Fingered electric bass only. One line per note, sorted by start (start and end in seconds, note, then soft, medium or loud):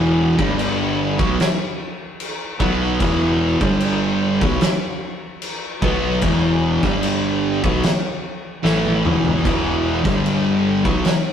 0.00 0.34 E1 loud
0.39 1.15 G1 loud
1.19 1.38 B1 loud
2.60 2.97 B1 medium
3.00 3.57 E1 loud
3.61 4.37 G1 loud
4.41 4.60 B1 loud
5.82 6.20 B1 medium
6.23 6.79 E1 loud
6.83 7.59 G1 loud
7.64 7.82 B1 loud
8.64 9.01 A1 medium
9.04 9.41 E1 medium
9.46 10.01 E1 loud
10.05 10.81 G1 loud
10.85 11.03 B1 loud